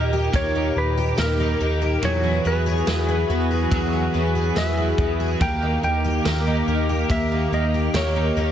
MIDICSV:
0, 0, Header, 1, 7, 480
1, 0, Start_track
1, 0, Tempo, 845070
1, 1153, Time_signature, 4, 2, 24, 8
1, 4838, End_track
2, 0, Start_track
2, 0, Title_t, "Electric slide guitar"
2, 0, Program_c, 0, 29
2, 0, Note_on_c, 0, 75, 112
2, 200, Note_off_c, 0, 75, 0
2, 202, Note_on_c, 0, 73, 97
2, 443, Note_on_c, 0, 71, 92
2, 444, Note_off_c, 0, 73, 0
2, 677, Note_off_c, 0, 71, 0
2, 679, Note_on_c, 0, 70, 90
2, 1164, Note_on_c, 0, 73, 93
2, 1170, Note_off_c, 0, 70, 0
2, 1382, Note_off_c, 0, 73, 0
2, 1404, Note_on_c, 0, 71, 82
2, 2000, Note_off_c, 0, 71, 0
2, 2000, Note_on_c, 0, 70, 82
2, 2336, Note_off_c, 0, 70, 0
2, 2602, Note_on_c, 0, 76, 88
2, 3077, Note_on_c, 0, 79, 111
2, 3092, Note_off_c, 0, 76, 0
2, 3298, Note_off_c, 0, 79, 0
2, 3318, Note_on_c, 0, 79, 112
2, 4040, Note_on_c, 0, 76, 96
2, 4057, Note_off_c, 0, 79, 0
2, 4260, Note_off_c, 0, 76, 0
2, 4283, Note_on_c, 0, 75, 86
2, 4520, Note_off_c, 0, 75, 0
2, 4522, Note_on_c, 0, 73, 86
2, 4838, Note_off_c, 0, 73, 0
2, 4838, End_track
3, 0, Start_track
3, 0, Title_t, "Clean electric guitar"
3, 0, Program_c, 1, 27
3, 0, Note_on_c, 1, 63, 46
3, 0, Note_on_c, 1, 67, 55
3, 0, Note_on_c, 1, 70, 60
3, 185, Note_on_c, 1, 58, 57
3, 189, Note_off_c, 1, 70, 0
3, 190, Note_off_c, 1, 63, 0
3, 197, Note_off_c, 1, 67, 0
3, 197, Note_on_c, 1, 63, 64
3, 205, Note_on_c, 1, 67, 69
3, 215, Note_on_c, 1, 70, 68
3, 429, Note_off_c, 1, 58, 0
3, 433, Note_off_c, 1, 67, 0
3, 435, Note_off_c, 1, 63, 0
3, 440, Note_on_c, 1, 67, 45
3, 444, Note_off_c, 1, 70, 0
3, 452, Note_on_c, 1, 63, 41
3, 667, Note_on_c, 1, 51, 79
3, 669, Note_off_c, 1, 63, 0
3, 672, Note_on_c, 1, 58, 81
3, 675, Note_off_c, 1, 67, 0
3, 676, Note_on_c, 1, 63, 86
3, 682, Note_on_c, 1, 67, 90
3, 686, Note_on_c, 1, 70, 93
3, 898, Note_off_c, 1, 70, 0
3, 905, Note_on_c, 1, 70, 52
3, 910, Note_off_c, 1, 51, 0
3, 913, Note_off_c, 1, 58, 0
3, 914, Note_off_c, 1, 67, 0
3, 915, Note_off_c, 1, 63, 0
3, 920, Note_on_c, 1, 67, 48
3, 933, Note_on_c, 1, 63, 44
3, 1147, Note_on_c, 1, 52, 79
3, 1149, Note_off_c, 1, 70, 0
3, 1153, Note_on_c, 1, 54, 80
3, 1156, Note_off_c, 1, 63, 0
3, 1157, Note_off_c, 1, 67, 0
3, 1158, Note_on_c, 1, 59, 84
3, 1163, Note_on_c, 1, 66, 94
3, 1167, Note_on_c, 1, 68, 85
3, 1379, Note_off_c, 1, 68, 0
3, 1386, Note_on_c, 1, 68, 58
3, 1390, Note_off_c, 1, 52, 0
3, 1393, Note_off_c, 1, 54, 0
3, 1394, Note_off_c, 1, 66, 0
3, 1396, Note_off_c, 1, 59, 0
3, 1401, Note_on_c, 1, 66, 49
3, 1414, Note_on_c, 1, 59, 43
3, 1627, Note_on_c, 1, 52, 72
3, 1629, Note_off_c, 1, 68, 0
3, 1631, Note_off_c, 1, 59, 0
3, 1634, Note_on_c, 1, 54, 78
3, 1636, Note_off_c, 1, 66, 0
3, 1638, Note_on_c, 1, 59, 78
3, 1643, Note_on_c, 1, 66, 80
3, 1647, Note_on_c, 1, 68, 83
3, 1858, Note_off_c, 1, 68, 0
3, 1865, Note_on_c, 1, 68, 56
3, 1870, Note_off_c, 1, 52, 0
3, 1873, Note_off_c, 1, 54, 0
3, 1874, Note_off_c, 1, 66, 0
3, 1875, Note_off_c, 1, 59, 0
3, 1881, Note_on_c, 1, 66, 52
3, 1894, Note_on_c, 1, 59, 47
3, 2107, Note_on_c, 1, 54, 73
3, 2109, Note_off_c, 1, 68, 0
3, 2112, Note_off_c, 1, 59, 0
3, 2117, Note_off_c, 1, 66, 0
3, 2119, Note_on_c, 1, 59, 72
3, 2127, Note_on_c, 1, 66, 77
3, 2135, Note_on_c, 1, 68, 78
3, 2339, Note_off_c, 1, 68, 0
3, 2346, Note_on_c, 1, 68, 59
3, 2350, Note_off_c, 1, 54, 0
3, 2355, Note_off_c, 1, 66, 0
3, 2356, Note_off_c, 1, 59, 0
3, 2362, Note_on_c, 1, 66, 57
3, 2375, Note_on_c, 1, 59, 51
3, 2588, Note_on_c, 1, 52, 90
3, 2589, Note_off_c, 1, 68, 0
3, 2592, Note_off_c, 1, 59, 0
3, 2593, Note_on_c, 1, 54, 80
3, 2597, Note_off_c, 1, 66, 0
3, 2598, Note_on_c, 1, 59, 87
3, 2603, Note_on_c, 1, 66, 91
3, 2607, Note_on_c, 1, 68, 91
3, 2819, Note_off_c, 1, 68, 0
3, 2826, Note_on_c, 1, 68, 51
3, 2830, Note_off_c, 1, 52, 0
3, 2833, Note_off_c, 1, 54, 0
3, 2835, Note_off_c, 1, 66, 0
3, 2836, Note_off_c, 1, 59, 0
3, 2842, Note_on_c, 1, 66, 49
3, 2854, Note_on_c, 1, 59, 45
3, 3067, Note_on_c, 1, 51, 77
3, 3069, Note_off_c, 1, 68, 0
3, 3073, Note_on_c, 1, 58, 82
3, 3077, Note_off_c, 1, 59, 0
3, 3077, Note_off_c, 1, 66, 0
3, 3079, Note_on_c, 1, 63, 83
3, 3082, Note_on_c, 1, 67, 90
3, 3087, Note_on_c, 1, 70, 81
3, 3296, Note_off_c, 1, 70, 0
3, 3303, Note_on_c, 1, 70, 57
3, 3310, Note_off_c, 1, 51, 0
3, 3313, Note_off_c, 1, 58, 0
3, 3313, Note_off_c, 1, 67, 0
3, 3316, Note_off_c, 1, 63, 0
3, 3320, Note_on_c, 1, 67, 46
3, 3332, Note_on_c, 1, 63, 40
3, 3547, Note_on_c, 1, 51, 78
3, 3548, Note_off_c, 1, 70, 0
3, 3552, Note_off_c, 1, 63, 0
3, 3552, Note_on_c, 1, 58, 83
3, 3555, Note_off_c, 1, 67, 0
3, 3558, Note_on_c, 1, 63, 76
3, 3562, Note_on_c, 1, 67, 89
3, 3566, Note_on_c, 1, 70, 79
3, 3779, Note_off_c, 1, 70, 0
3, 3786, Note_on_c, 1, 70, 56
3, 3790, Note_off_c, 1, 51, 0
3, 3793, Note_off_c, 1, 58, 0
3, 3795, Note_off_c, 1, 67, 0
3, 3796, Note_off_c, 1, 63, 0
3, 3802, Note_on_c, 1, 67, 52
3, 3815, Note_on_c, 1, 63, 49
3, 4027, Note_on_c, 1, 58, 72
3, 4029, Note_off_c, 1, 70, 0
3, 4037, Note_off_c, 1, 67, 0
3, 4044, Note_off_c, 1, 63, 0
3, 4048, Note_on_c, 1, 67, 70
3, 4056, Note_on_c, 1, 70, 68
3, 4258, Note_off_c, 1, 70, 0
3, 4265, Note_on_c, 1, 70, 52
3, 4270, Note_off_c, 1, 58, 0
3, 4273, Note_off_c, 1, 67, 0
3, 4280, Note_on_c, 1, 67, 44
3, 4293, Note_on_c, 1, 63, 41
3, 4509, Note_off_c, 1, 70, 0
3, 4509, Note_on_c, 1, 51, 91
3, 4513, Note_off_c, 1, 63, 0
3, 4514, Note_on_c, 1, 58, 88
3, 4516, Note_off_c, 1, 67, 0
3, 4519, Note_on_c, 1, 63, 88
3, 4525, Note_on_c, 1, 67, 91
3, 4529, Note_on_c, 1, 70, 97
3, 4738, Note_off_c, 1, 70, 0
3, 4744, Note_on_c, 1, 70, 52
3, 4751, Note_off_c, 1, 51, 0
3, 4753, Note_off_c, 1, 67, 0
3, 4754, Note_off_c, 1, 58, 0
3, 4756, Note_off_c, 1, 63, 0
3, 4760, Note_on_c, 1, 67, 46
3, 4773, Note_on_c, 1, 63, 41
3, 4838, Note_off_c, 1, 63, 0
3, 4838, Note_off_c, 1, 67, 0
3, 4838, Note_off_c, 1, 70, 0
3, 4838, End_track
4, 0, Start_track
4, 0, Title_t, "Analog synth pad"
4, 0, Program_c, 2, 89
4, 0, Note_on_c, 2, 46, 87
4, 0, Note_on_c, 2, 63, 76
4, 0, Note_on_c, 2, 67, 92
4, 1135, Note_off_c, 2, 63, 0
4, 1135, Note_off_c, 2, 67, 0
4, 1136, Note_off_c, 2, 46, 0
4, 1153, Note_on_c, 2, 71, 91
4, 1154, Note_on_c, 2, 66, 76
4, 1154, Note_on_c, 2, 68, 80
4, 1155, Note_on_c, 2, 52, 82
4, 1155, Note_on_c, 2, 64, 70
4, 3054, Note_off_c, 2, 66, 0
4, 3054, Note_off_c, 2, 68, 0
4, 3054, Note_off_c, 2, 71, 0
4, 3055, Note_off_c, 2, 52, 0
4, 3055, Note_off_c, 2, 64, 0
4, 3070, Note_on_c, 2, 51, 70
4, 3070, Note_on_c, 2, 58, 87
4, 3071, Note_on_c, 2, 67, 89
4, 4838, Note_off_c, 2, 51, 0
4, 4838, Note_off_c, 2, 58, 0
4, 4838, Note_off_c, 2, 67, 0
4, 4838, End_track
5, 0, Start_track
5, 0, Title_t, "Twelve-string acoustic guitar"
5, 0, Program_c, 3, 25
5, 0, Note_on_c, 3, 58, 63
5, 0, Note_on_c, 3, 63, 57
5, 0, Note_on_c, 3, 67, 66
5, 66, Note_off_c, 3, 67, 0
5, 73, Note_on_c, 3, 67, 66
5, 187, Note_off_c, 3, 58, 0
5, 194, Note_on_c, 3, 58, 82
5, 307, Note_off_c, 3, 63, 0
5, 314, Note_on_c, 3, 63, 61
5, 433, Note_off_c, 3, 58, 0
5, 547, Note_off_c, 3, 67, 0
5, 554, Note_on_c, 3, 67, 64
5, 673, Note_on_c, 3, 58, 58
5, 786, Note_off_c, 3, 63, 0
5, 793, Note_on_c, 3, 63, 55
5, 905, Note_off_c, 3, 58, 0
5, 911, Note_on_c, 3, 58, 67
5, 1025, Note_off_c, 3, 67, 0
5, 1032, Note_on_c, 3, 67, 69
5, 1151, Note_on_c, 3, 54, 81
5, 1200, Note_off_c, 3, 58, 0
5, 1200, Note_off_c, 3, 67, 0
5, 1201, Note_off_c, 3, 63, 0
5, 1271, Note_on_c, 3, 64, 54
5, 1391, Note_on_c, 3, 59, 66
5, 1512, Note_on_c, 3, 68, 65
5, 1625, Note_off_c, 3, 59, 0
5, 1632, Note_on_c, 3, 59, 60
5, 1745, Note_off_c, 3, 64, 0
5, 1752, Note_on_c, 3, 64, 56
5, 1866, Note_off_c, 3, 59, 0
5, 1873, Note_on_c, 3, 59, 68
5, 1986, Note_off_c, 3, 68, 0
5, 1993, Note_on_c, 3, 68, 63
5, 2105, Note_off_c, 3, 54, 0
5, 2112, Note_on_c, 3, 54, 85
5, 2225, Note_off_c, 3, 64, 0
5, 2231, Note_on_c, 3, 64, 58
5, 2344, Note_off_c, 3, 59, 0
5, 2351, Note_on_c, 3, 59, 66
5, 2466, Note_off_c, 3, 68, 0
5, 2472, Note_on_c, 3, 68, 61
5, 2585, Note_off_c, 3, 59, 0
5, 2592, Note_on_c, 3, 59, 62
5, 2705, Note_off_c, 3, 64, 0
5, 2712, Note_on_c, 3, 64, 61
5, 2825, Note_off_c, 3, 59, 0
5, 2832, Note_on_c, 3, 59, 63
5, 2946, Note_off_c, 3, 68, 0
5, 2953, Note_on_c, 3, 68, 73
5, 3071, Note_off_c, 3, 59, 0
5, 3074, Note_on_c, 3, 58, 82
5, 3120, Note_off_c, 3, 54, 0
5, 3120, Note_off_c, 3, 64, 0
5, 3121, Note_off_c, 3, 68, 0
5, 3194, Note_on_c, 3, 63, 58
5, 3306, Note_off_c, 3, 58, 0
5, 3313, Note_on_c, 3, 58, 66
5, 3434, Note_on_c, 3, 67, 72
5, 3548, Note_off_c, 3, 58, 0
5, 3554, Note_on_c, 3, 58, 67
5, 3667, Note_off_c, 3, 63, 0
5, 3674, Note_on_c, 3, 63, 61
5, 3787, Note_off_c, 3, 58, 0
5, 3794, Note_on_c, 3, 58, 62
5, 3908, Note_off_c, 3, 67, 0
5, 3915, Note_on_c, 3, 67, 62
5, 4027, Note_off_c, 3, 58, 0
5, 4034, Note_on_c, 3, 58, 85
5, 4148, Note_off_c, 3, 63, 0
5, 4155, Note_on_c, 3, 63, 62
5, 4269, Note_off_c, 3, 58, 0
5, 4276, Note_on_c, 3, 58, 62
5, 4390, Note_off_c, 3, 67, 0
5, 4397, Note_on_c, 3, 67, 60
5, 4509, Note_off_c, 3, 58, 0
5, 4516, Note_on_c, 3, 58, 65
5, 4628, Note_off_c, 3, 63, 0
5, 4635, Note_on_c, 3, 63, 58
5, 4746, Note_off_c, 3, 58, 0
5, 4753, Note_on_c, 3, 58, 68
5, 4838, Note_off_c, 3, 58, 0
5, 4838, Note_off_c, 3, 63, 0
5, 4838, Note_off_c, 3, 67, 0
5, 4838, End_track
6, 0, Start_track
6, 0, Title_t, "Analog synth bass"
6, 0, Program_c, 4, 38
6, 0, Note_on_c, 4, 39, 93
6, 163, Note_off_c, 4, 39, 0
6, 190, Note_on_c, 4, 39, 94
6, 403, Note_off_c, 4, 39, 0
6, 431, Note_on_c, 4, 39, 107
6, 643, Note_off_c, 4, 39, 0
6, 671, Note_on_c, 4, 39, 104
6, 883, Note_off_c, 4, 39, 0
6, 911, Note_on_c, 4, 39, 94
6, 1123, Note_off_c, 4, 39, 0
6, 1151, Note_on_c, 4, 40, 114
6, 1363, Note_off_c, 4, 40, 0
6, 1393, Note_on_c, 4, 40, 104
6, 1604, Note_off_c, 4, 40, 0
6, 1631, Note_on_c, 4, 40, 98
6, 1843, Note_off_c, 4, 40, 0
6, 1871, Note_on_c, 4, 40, 99
6, 2083, Note_off_c, 4, 40, 0
6, 2110, Note_on_c, 4, 40, 105
6, 2322, Note_off_c, 4, 40, 0
6, 2352, Note_on_c, 4, 40, 102
6, 2564, Note_off_c, 4, 40, 0
6, 2591, Note_on_c, 4, 40, 99
6, 2803, Note_off_c, 4, 40, 0
6, 2830, Note_on_c, 4, 40, 100
6, 3042, Note_off_c, 4, 40, 0
6, 3072, Note_on_c, 4, 39, 113
6, 3284, Note_off_c, 4, 39, 0
6, 3312, Note_on_c, 4, 39, 96
6, 3524, Note_off_c, 4, 39, 0
6, 3552, Note_on_c, 4, 39, 100
6, 3764, Note_off_c, 4, 39, 0
6, 3791, Note_on_c, 4, 39, 95
6, 4003, Note_off_c, 4, 39, 0
6, 4030, Note_on_c, 4, 39, 108
6, 4243, Note_off_c, 4, 39, 0
6, 4269, Note_on_c, 4, 39, 98
6, 4482, Note_off_c, 4, 39, 0
6, 4508, Note_on_c, 4, 39, 108
6, 4721, Note_off_c, 4, 39, 0
6, 4749, Note_on_c, 4, 39, 90
6, 4838, Note_off_c, 4, 39, 0
6, 4838, End_track
7, 0, Start_track
7, 0, Title_t, "Drums"
7, 190, Note_on_c, 9, 36, 92
7, 192, Note_on_c, 9, 51, 56
7, 247, Note_off_c, 9, 36, 0
7, 249, Note_off_c, 9, 51, 0
7, 668, Note_on_c, 9, 54, 69
7, 670, Note_on_c, 9, 38, 104
7, 672, Note_on_c, 9, 51, 64
7, 725, Note_off_c, 9, 54, 0
7, 727, Note_off_c, 9, 38, 0
7, 729, Note_off_c, 9, 51, 0
7, 1151, Note_on_c, 9, 51, 60
7, 1207, Note_off_c, 9, 51, 0
7, 1630, Note_on_c, 9, 54, 63
7, 1631, Note_on_c, 9, 38, 108
7, 1631, Note_on_c, 9, 51, 58
7, 1687, Note_off_c, 9, 54, 0
7, 1688, Note_off_c, 9, 38, 0
7, 1688, Note_off_c, 9, 51, 0
7, 2110, Note_on_c, 9, 36, 99
7, 2112, Note_on_c, 9, 51, 57
7, 2167, Note_off_c, 9, 36, 0
7, 2169, Note_off_c, 9, 51, 0
7, 2591, Note_on_c, 9, 54, 68
7, 2592, Note_on_c, 9, 38, 106
7, 2595, Note_on_c, 9, 51, 63
7, 2647, Note_off_c, 9, 54, 0
7, 2649, Note_off_c, 9, 38, 0
7, 2651, Note_off_c, 9, 51, 0
7, 2830, Note_on_c, 9, 36, 100
7, 2887, Note_off_c, 9, 36, 0
7, 3071, Note_on_c, 9, 51, 56
7, 3072, Note_on_c, 9, 36, 123
7, 3128, Note_off_c, 9, 51, 0
7, 3129, Note_off_c, 9, 36, 0
7, 3552, Note_on_c, 9, 54, 67
7, 3553, Note_on_c, 9, 38, 105
7, 3553, Note_on_c, 9, 51, 60
7, 3609, Note_off_c, 9, 54, 0
7, 3610, Note_off_c, 9, 38, 0
7, 3610, Note_off_c, 9, 51, 0
7, 4031, Note_on_c, 9, 36, 104
7, 4034, Note_on_c, 9, 51, 61
7, 4088, Note_off_c, 9, 36, 0
7, 4091, Note_off_c, 9, 51, 0
7, 4510, Note_on_c, 9, 54, 60
7, 4512, Note_on_c, 9, 38, 108
7, 4514, Note_on_c, 9, 51, 66
7, 4567, Note_off_c, 9, 54, 0
7, 4568, Note_off_c, 9, 38, 0
7, 4571, Note_off_c, 9, 51, 0
7, 4838, End_track
0, 0, End_of_file